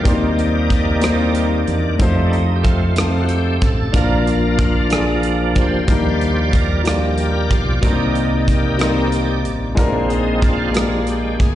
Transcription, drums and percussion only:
0.05 kick medium
0.05 closed hi-hat medium
0.39 closed hi-hat soft
0.70 kick medium
0.70 cross-stick soft
0.70 closed hi-hat soft
1.02 cross-stick medium
1.02 closed hi-hat medium
1.35 closed hi-hat medium
1.68 closed hi-hat soft
2.00 kick medium
2.00 closed hi-hat medium
2.33 closed hi-hat soft
2.64 kick medium
2.64 cross-stick soft
2.64 closed hi-hat soft
2.96 cross-stick medium
2.96 closed hi-hat medium
3.29 closed hi-hat soft
3.62 kick medium
3.62 closed hi-hat soft
3.94 kick medium
3.94 closed hi-hat medium
4.27 closed hi-hat soft
4.59 kick medium
4.59 closed hi-hat soft
4.90 cross-stick medium
4.90 closed hi-hat medium
5.23 closed hi-hat soft
5.56 kick medium
5.56 closed hi-hat soft
5.88 kick medium
5.88 closed hi-hat medium
6.21 closed hi-hat soft
6.53 kick medium
6.53 cross-stick soft
6.53 closed hi-hat soft
6.85 cross-stick medium
6.85 closed hi-hat medium
7.18 closed hi-hat soft
7.51 kick medium
7.51 closed hi-hat soft
7.83 kick medium
7.83 closed hi-hat medium
8.15 closed hi-hat soft
8.48 kick medium
8.48 closed hi-hat soft
8.79 cross-stick medium
8.79 closed hi-hat medium
9.12 closed hi-hat medium
9.45 closed hi-hat soft
9.77 kick medium
9.77 closed hi-hat medium
10.10 closed hi-hat soft
10.42 kick medium
10.42 closed hi-hat soft
10.74 cross-stick medium
10.74 closed hi-hat medium
11.07 closed hi-hat soft
11.40 kick medium
11.40 closed hi-hat soft

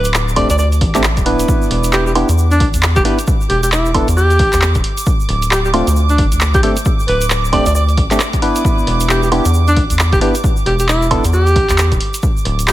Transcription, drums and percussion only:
0.04 closed hi-hat medium
0.04 shaker medium
0.14 clap loud
0.14 shaker medium
0.28 shaker soft
0.36 kick medium
0.36 cross-stick medium
0.36 open hi-hat loud
0.36 high woodblock medium
0.50 closed hi-hat medium
0.50 shaker medium
0.58 cross-stick medium
0.58 shaker medium
0.72 closed hi-hat soft
0.72 shaker soft
0.81 kick loud
0.81 open hi-hat loud
0.95 clap medium
0.95 closed hi-hat medium
0.95 shaker medium
1.03 clap loud
1.03 shaker medium
1.17 kick medium
1.17 closed hi-hat medium
1.17 shaker soft
1.26 open hi-hat loud
1.39 closed hi-hat medium
1.39 shaker medium
1.48 kick loud
1.48 shaker medium
1.62 shaker soft
1.71 cross-stick medium
1.71 open hi-hat loud
1.84 closed hi-hat medium
1.84 shaker medium
1.92 clap loud
1.92 shaker medium
2.07 shaker soft
2.15 cross-stick medium
2.15 open hi-hat loud
2.15 high woodblock medium
2.29 closed hi-hat medium
2.29 shaker medium
2.38 shaker medium
2.51 closed hi-hat soft
2.51 shaker soft
2.60 kick loud
2.60 open hi-hat loud
2.74 closed hi-hat medium
2.74 shaker medium
2.82 clap loud
2.82 shaker medium
2.96 kick loud
2.96 closed hi-hat medium
2.96 shaker soft
3.05 cross-stick medium
3.05 open hi-hat loud
3.19 closed hi-hat medium
3.19 shaker medium
3.27 kick loud
3.27 shaker medium
3.41 shaker soft
3.50 cross-stick medium
3.50 open hi-hat loud
3.63 closed hi-hat medium
3.63 shaker medium
3.72 clap loud
3.72 shaker medium
3.85 shaker soft
3.94 kick medium
3.94 cross-stick medium
3.94 open hi-hat loud
3.94 high woodblock medium
4.08 closed hi-hat medium
4.08 shaker medium
4.17 cross-stick medium
4.17 shaker medium
4.30 closed hi-hat soft
4.30 shaker soft
4.39 kick loud
4.39 open hi-hat loud
4.53 clap medium
4.53 closed hi-hat medium
4.53 shaker medium
4.62 clap loud
4.62 shaker medium
4.75 kick medium
4.75 closed hi-hat medium
4.75 shaker soft
4.84 open hi-hat loud
4.97 closed hi-hat medium
4.97 shaker medium
5.06 kick loud
5.06 shaker medium
5.20 shaker soft
5.29 cross-stick medium
5.29 open hi-hat loud
5.42 closed hi-hat medium
5.42 shaker medium
5.51 clap loud
5.51 shaker medium
5.65 shaker soft
5.74 cross-stick medium
5.74 open hi-hat loud
5.74 high woodblock medium
5.87 closed hi-hat medium
5.87 shaker medium
5.96 shaker medium
6.09 closed hi-hat soft
6.09 shaker soft
6.18 kick loud
6.18 open hi-hat loud
6.32 closed hi-hat medium
6.32 shaker medium
6.40 clap loud
6.40 shaker medium
6.54 kick loud
6.54 closed hi-hat medium
6.54 shaker soft
6.63 cross-stick medium
6.63 open hi-hat loud
6.77 closed hi-hat medium
6.77 shaker medium
6.85 kick loud
6.85 shaker medium
6.99 shaker soft
7.08 cross-stick medium
7.08 open hi-hat loud
7.21 closed hi-hat medium
7.21 shaker medium
7.30 clap loud
7.30 shaker medium
7.45 shaker soft
7.53 kick medium
7.53 cross-stick medium
7.53 open hi-hat loud
7.53 high woodblock medium
7.66 closed hi-hat medium
7.66 shaker medium
7.75 cross-stick medium
7.75 shaker medium
7.89 closed hi-hat soft
7.89 shaker soft
7.97 kick loud
7.97 open hi-hat loud
8.11 clap medium
8.11 closed hi-hat medium
8.11 shaker medium
8.20 clap loud
8.20 shaker medium
8.33 kick medium
8.33 closed hi-hat medium
8.33 shaker soft
8.42 open hi-hat loud
8.56 closed hi-hat medium
8.56 shaker medium
8.65 kick loud
8.65 shaker medium
8.78 shaker soft
8.87 cross-stick medium
8.87 open hi-hat loud
9.01 closed hi-hat medium
9.01 shaker medium
9.09 clap loud
9.09 shaker medium
9.23 shaker soft
9.32 cross-stick medium
9.32 open hi-hat loud
9.32 high woodblock medium
9.45 closed hi-hat medium
9.45 shaker medium
9.54 shaker medium
9.67 closed hi-hat soft
9.67 shaker soft
9.76 kick loud
9.76 open hi-hat loud
9.90 closed hi-hat medium
9.90 shaker medium
9.99 clap loud
9.99 shaker medium
10.13 kick loud
10.13 closed hi-hat medium
10.13 shaker soft
10.21 cross-stick medium
10.21 open hi-hat loud
10.35 closed hi-hat medium
10.35 shaker medium
10.44 kick loud
10.44 shaker medium
10.57 shaker soft
10.66 cross-stick medium
10.66 open hi-hat loud
10.79 closed hi-hat medium
10.79 shaker medium
10.89 clap loud
10.89 shaker medium
11.02 shaker soft
11.11 kick medium
11.11 cross-stick medium
11.11 open hi-hat loud
11.11 high woodblock medium
11.24 closed hi-hat medium
11.24 shaker medium
11.33 cross-stick medium
11.33 shaker medium
11.47 closed hi-hat soft
11.47 shaker soft
11.56 kick loud
11.56 open hi-hat loud
11.69 clap medium
11.69 closed hi-hat medium
11.69 shaker medium
11.78 clap loud
11.78 shaker medium
11.92 kick medium
11.92 closed hi-hat medium
11.92 shaker soft
12.01 open hi-hat loud
12.14 closed hi-hat medium
12.14 shaker medium
12.23 kick loud
12.23 shaker medium
12.37 shaker soft
12.45 cross-stick medium
12.45 open hi-hat loud
12.59 closed hi-hat medium
12.59 shaker medium
12.68 clap loud
12.68 shaker medium

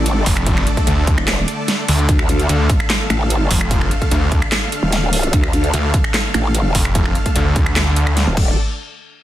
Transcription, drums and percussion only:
0.06 closed hi-hat medium
0.26 kick medium
0.26 open hi-hat medium
0.37 finger snap medium
0.47 kick loud
0.47 closed hi-hat medium
0.57 finger snap medium
0.67 closed hi-hat medium
0.77 kick medium
0.77 closed hi-hat soft
0.87 closed hi-hat medium
1.07 kick loud
1.07 closed hi-hat soft
1.18 finger snap medium
1.28 snare loud
1.28 clap medium
1.28 closed hi-hat medium
1.48 closed hi-hat medium
1.68 snare medium
1.68 closed hi-hat medium
1.88 open hi-hat medium
1.99 closed hi-hat soft
2.09 kick loud
2.09 closed hi-hat medium
2.19 finger snap medium
2.29 closed hi-hat medium
2.39 closed hi-hat soft
2.49 closed hi-hat medium
2.70 kick loud
2.70 closed hi-hat medium
2.80 finger snap medium
2.90 snare loud
2.90 clap medium
2.90 closed hi-hat medium
3.10 finger snap medium
3.10 closed hi-hat soft
3.30 closed hi-hat medium
3.51 kick medium
3.51 open hi-hat loud
3.61 finger snap medium
3.71 kick loud
3.71 closed hi-hat medium
3.81 finger snap medium
3.91 closed hi-hat medium
4.02 kick medium
4.02 closed hi-hat soft
4.11 closed hi-hat medium
4.32 kick loud
4.32 closed hi-hat medium
4.42 finger snap medium
4.52 snare loud
4.52 clap medium
4.52 closed hi-hat medium
4.72 closed hi-hat soft
4.92 snare medium
4.92 closed hi-hat medium
5.13 open hi-hat loud
5.23 closed hi-hat soft
5.33 kick loud
5.33 closed hi-hat medium
5.44 finger snap medium
5.53 closed hi-hat medium
5.64 closed hi-hat soft
5.74 closed hi-hat medium
5.94 kick loud
5.94 closed hi-hat medium
6.04 finger snap medium
6.14 snare loud
6.14 clap medium
6.14 closed hi-hat medium
6.34 finger snap medium
6.34 closed hi-hat medium
6.55 closed hi-hat medium
6.75 kick medium
6.75 open hi-hat loud
6.85 finger snap medium
6.95 kick loud
6.95 closed hi-hat medium
7.06 finger snap medium
7.15 closed hi-hat medium
7.26 kick medium
7.26 closed hi-hat soft
7.36 closed hi-hat medium
7.56 kick loud
7.56 closed hi-hat medium
7.66 finger snap medium
7.76 snare loud
7.76 clap medium
7.76 closed hi-hat medium
7.96 closed hi-hat medium
8.07 finger snap medium
8.17 snare medium
8.17 closed hi-hat medium
8.37 kick loud
8.37 crash medium

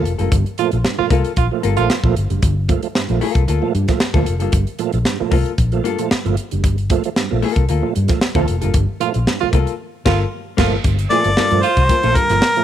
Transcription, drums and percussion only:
0.05 closed hi-hat medium
0.19 closed hi-hat medium
0.32 kick loud
0.32 closed hi-hat medium
0.46 closed hi-hat soft
0.58 closed hi-hat medium
0.71 closed hi-hat soft
0.85 snare medium
1.10 kick medium
1.10 closed hi-hat medium
1.25 closed hi-hat soft
1.36 kick medium
1.36 closed hi-hat medium
1.63 closed hi-hat medium
1.77 closed hi-hat medium
1.90 snare loud
2.04 kick medium
2.16 closed hi-hat medium
2.30 closed hi-hat medium
2.42 kick loud
2.42 closed hi-hat loud
2.69 kick medium
2.69 closed hi-hat medium
2.83 closed hi-hat medium
2.95 snare medium
3.09 closed hi-hat soft
3.21 open hi-hat medium
3.35 kick medium
3.35 closed hi-hat soft
3.48 closed hi-hat medium
3.75 closed hi-hat medium
3.88 kick medium
3.88 snare soft
3.88 closed hi-hat medium
4.00 snare loud
4.14 kick loud
4.14 closed hi-hat soft
4.26 closed hi-hat medium
4.40 closed hi-hat medium
4.52 kick loud
4.52 closed hi-hat medium
4.67 closed hi-hat soft
4.79 closed hi-hat medium
4.92 closed hi-hat soft
5.05 snare loud
5.31 kick medium
5.31 open hi-hat medium
5.46 closed hi-hat soft
5.58 kick medium
5.58 closed hi-hat medium
5.72 closed hi-hat soft
5.85 closed hi-hat medium
5.98 closed hi-hat medium
6.11 snare loud
6.26 closed hi-hat soft
6.37 closed hi-hat medium
6.51 closed hi-hat medium
6.64 kick loud
6.64 closed hi-hat medium
6.78 closed hi-hat soft
6.90 kick medium
6.90 closed hi-hat medium
7.04 closed hi-hat medium
7.16 snare medium
7.42 open hi-hat medium
7.56 kick medium
7.56 closed hi-hat soft
7.69 closed hi-hat medium
7.96 closed hi-hat medium
8.08 kick medium
8.08 snare soft
8.08 closed hi-hat medium
8.21 snare loud
8.35 kick loud
8.35 closed hi-hat soft
8.48 closed hi-hat medium
8.62 closed hi-hat medium
8.74 kick loud
8.74 closed hi-hat medium
9.01 closed hi-hat medium
9.14 closed hi-hat medium
9.27 snare loud
9.41 closed hi-hat soft
9.53 kick medium
9.53 closed hi-hat medium
9.67 closed hi-hat soft
10.06 kick loud
10.06 snare loud
10.06 crash medium
10.58 kick loud
10.58 snare loud
10.58 crash medium
10.84 kick loud
10.84 closed hi-hat medium
10.99 closed hi-hat medium
11.11 closed hi-hat medium
11.24 closed hi-hat medium
11.37 snare loud
11.50 closed hi-hat soft
11.63 closed hi-hat medium
11.77 kick medium
11.77 closed hi-hat soft
11.89 kick loud
11.89 closed hi-hat medium
12.03 closed hi-hat soft
12.16 kick medium
12.16 closed hi-hat medium
12.29 snare soft
12.29 closed hi-hat medium
12.42 snare loud
12.56 closed hi-hat soft

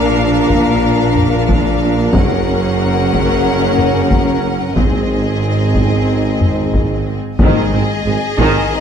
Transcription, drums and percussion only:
0.50 taiko medium
1.15 taiko low-mid soft
1.49 taiko medium
2.14 taiko medium
3.13 taiko medium
3.78 taiko low-mid soft
4.11 taiko medium
4.77 taiko medium
5.75 taiko medium
6.41 taiko low-mid soft
6.74 taiko medium
7.39 taiko loud
8.38 taiko medium

